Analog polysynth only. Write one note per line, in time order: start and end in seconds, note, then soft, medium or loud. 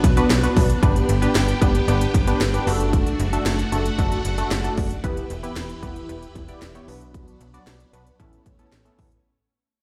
0.17 0.31 B3 medium
0.17 0.31 D4 medium
0.17 0.31 F#4 medium
0.17 0.31 B4 loud
0.43 0.66 B3 medium
0.43 0.66 D4 medium
0.43 0.66 F#4 medium
0.43 0.66 B4 loud
0.83 1.05 B3 medium
0.83 1.06 D4 medium
0.83 1.06 G4 medium
0.83 1.06 B4 loud
1.22 1.45 B3 medium
1.22 1.45 D4 medium
1.22 1.45 G4 medium
1.22 1.45 B4 loud
1.61 1.75 B3 medium
1.61 1.75 D4 medium
1.61 1.75 G4 medium
1.61 1.76 B4 medium
1.88 2.11 B3 medium
1.88 2.11 D4 medium
1.88 2.11 G4 medium
1.88 2.11 B4 loud
2.27 2.42 B3 medium
2.27 2.41 D4 medium
2.27 2.41 G4 medium
2.27 2.41 B4 loud
2.54 2.67 B3 medium
2.54 2.66 D4 medium
2.54 2.67 G4 medium
2.54 2.67 B4 medium
2.67 3.20 A3 loud
2.67 3.20 D4 medium
2.67 3.20 F#4 medium
2.67 3.20 A4 loud
3.33 3.56 A3 medium
3.33 3.56 D4 medium
3.33 3.56 F#4 medium
3.33 3.56 A4 loud
3.72 3.86 A3 medium
3.72 3.86 D4 medium
3.72 3.86 F#4 medium
3.72 3.86 A4 loud
3.99 4.21 A3 medium
3.99 4.21 D4 medium
3.99 4.21 F#4 medium
3.99 4.21 A4 loud
4.38 4.52 A3 medium
4.38 4.52 D4 medium
4.38 4.52 F#4 medium
4.38 4.52 A4 loud
4.64 4.87 A3 medium
4.64 4.87 D4 medium
4.64 4.87 F#4 medium
4.64 4.87 A4 loud
5.04 5.27 B3 medium
5.04 5.27 E4 medium
5.04 5.27 G4 medium
5.04 5.27 B4 loud
5.43 5.66 B3 medium
5.43 5.66 E4 medium
5.43 5.66 G4 medium
5.43 5.66 B4 loud
5.82 5.96 B3 medium
5.82 5.96 E4 medium
5.82 5.97 G4 medium
5.82 5.97 B4 loud
6.09 6.32 B3 medium
6.09 6.32 E4 medium
6.09 6.32 G4 medium
6.09 6.32 B4 loud
6.49 6.63 B3 medium
6.49 6.63 E4 medium
6.49 6.63 G4 medium
6.49 6.63 D5 loud
6.75 6.87 B3 medium
6.75 6.88 E4 medium
6.75 6.88 G4 medium
6.75 6.88 C#5 medium
6.88 7.41 B3 loud
6.88 7.41 D4 medium
6.88 7.41 F#4 medium
6.88 7.41 B4 loud
7.54 7.77 B3 medium
7.54 7.77 D4 medium
7.54 7.77 F#4 medium
7.54 7.77 D5 loud
7.93 8.07 B3 medium
7.93 8.07 D4 medium
7.93 8.07 F#4 medium
7.93 8.07 B4 loud
8.19 8.42 B3 medium
8.19 8.42 C#4 medium
8.19 8.42 E4 medium
8.19 8.42 A4 loud
8.59 8.73 B3 medium
8.59 8.73 C#4 medium
8.59 8.73 E4 medium
8.59 8.73 A4 loud
8.85 9.08 B3 medium
8.85 9.08 C#4 medium
8.85 9.08 E4 medium
8.85 9.08 A4 medium